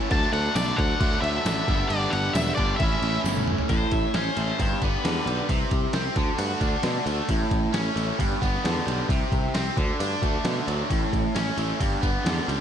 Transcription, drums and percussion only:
0.11 kick loud
0.11 crash medium
0.33 crash medium
0.55 snare loud
0.55 tambourine medium
0.55 crash medium
0.68 snare soft
0.78 kick medium
0.78 crash medium
1.01 kick loud
1.01 crash medium
1.24 crash medium
1.46 snare loud
1.46 tambourine medium
1.46 crash medium
1.68 kick loud
1.68 snare soft
1.68 crash medium
1.90 crash medium
2.13 crash medium
2.35 snare loud
2.35 tambourine medium
2.35 crash medium
2.47 snare soft
2.58 kick medium
2.58 crash medium
2.80 kick loud
2.80 crash medium
3.03 crash medium
3.25 snare medium
3.25 tambourine medium
3.37 high tom medium
3.47 mid tom medium
3.58 floor tom medium
3.69 kick loud
3.69 ride medium
3.91 kick medium
3.91 ride medium
4.14 snare loud
4.14 ride medium
4.37 ride medium
4.59 kick medium
4.59 ride medium
4.82 kick medium
4.82 ride medium
5.05 snare loud
5.05 ride medium
5.27 ride medium
5.49 kick loud
5.49 ride medium
5.71 kick medium
5.71 ride medium
5.93 snare loud
5.93 ride medium
6.16 kick medium
6.16 ride medium
6.39 ride medium
6.61 kick medium
6.61 ride medium
6.83 snare loud
6.83 ride medium
7.07 ride medium
7.29 kick loud
7.29 ride medium
7.51 kick medium
7.51 ride medium
7.74 snare loud
7.74 ride medium
7.97 ride medium
8.19 kick medium
8.19 ride medium
8.42 kick medium
8.42 ride medium
8.54 snare soft
8.65 snare loud
8.65 ride medium
8.88 ride medium
9.09 kick loud
9.09 ride medium
9.32 kick medium
9.32 ride medium
9.55 snare loud
9.55 ride medium
9.77 kick medium
9.77 ride medium
10.00 ride medium
10.22 kick medium
10.22 ride medium
10.45 snare loud
10.45 ride medium
10.68 ride medium
10.90 kick loud
10.90 ride medium
11.13 kick medium
11.13 ride medium
11.36 snare loud
11.36 ride medium
11.58 ride medium
11.80 kick medium
11.80 ride medium
12.03 kick medium
12.03 ride medium
12.26 snare loud
12.26 ride medium
12.49 ride medium

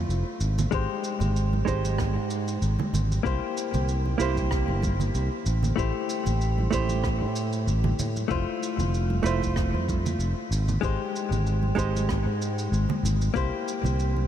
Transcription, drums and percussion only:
0.10 shaker medium
0.41 shaker medium
0.58 low conga medium
0.58 shaker medium
0.72 kick loud
0.72 shaker medium
1.04 shaker medium
1.20 low conga medium
1.20 shaker medium
1.36 shaker medium
1.53 high conga loud
1.68 kick medium
1.68 shaker medium
1.84 high conga medium
1.84 shaker medium
1.98 kick loud
1.98 cross-stick medium
1.98 shaker soft
2.30 shaker medium
2.48 shaker medium
2.62 shaker medium
2.79 high conga medium
2.79 low conga medium
2.94 low conga medium
2.94 shaker medium
3.11 high conga medium
3.11 shaker medium
3.26 kick loud
3.26 shaker medium
3.57 shaker medium
3.74 low conga medium
3.74 shaker medium
3.89 shaker soft
4.06 high conga medium
4.20 shaker medium
4.37 kick medium
4.37 high conga medium
4.37 shaker medium
4.51 kick loud
4.51 cross-stick medium
4.51 shaker soft
4.68 high conga medium
4.82 kick loud
4.82 high conga medium
4.82 shaker medium
5.00 low conga medium
5.00 shaker medium
5.15 shaker medium
5.46 shaker medium
5.63 low conga medium
5.63 shaker medium
5.78 kick loud
5.78 shaker medium
6.10 shaker medium
6.26 low conga medium
6.26 shaker medium
6.41 shaker soft
6.58 high conga medium
6.73 kick medium
6.73 shaker medium
6.89 high conga medium
6.89 shaker medium
7.04 kick loud
7.04 cross-stick medium
7.04 shaker soft
7.36 shaker medium
7.53 shaker medium
7.68 shaker medium
7.84 high conga medium
7.84 low conga medium
7.99 low conga medium
7.99 shaker medium
8.16 high conga medium
8.16 shaker medium
8.31 kick loud
8.31 shaker soft
8.63 shaker medium
8.79 low conga medium
8.79 shaker medium
8.94 shaker medium
9.10 high conga medium
9.26 shaker medium
9.42 kick medium
9.42 high conga medium
9.42 shaker medium
9.56 kick loud
9.56 cross-stick medium
9.56 shaker soft
9.75 high conga medium
9.89 kick loud
9.89 high conga medium
9.89 shaker medium
10.06 low conga medium
10.06 shaker medium
10.20 shaker medium
10.52 shaker medium
10.69 low conga medium
10.69 shaker medium
10.83 kick loud
10.83 shaker soft
11.16 shaker medium
11.32 low conga medium
11.32 shaker medium
11.47 shaker soft
11.63 high conga medium
11.78 kick medium
11.78 shaker medium
11.95 high conga medium
11.95 shaker medium
12.09 kick loud
12.09 cross-stick medium
12.09 shaker soft
12.42 shaker medium
12.59 shaker medium
12.73 shaker soft
12.89 high conga medium
12.89 low conga loud
13.05 low conga medium
13.05 shaker medium
13.21 high conga medium
13.21 shaker medium
13.36 kick loud
13.36 shaker soft
13.68 shaker medium
13.84 low conga medium
13.84 shaker soft
13.99 shaker medium
14.17 high conga medium

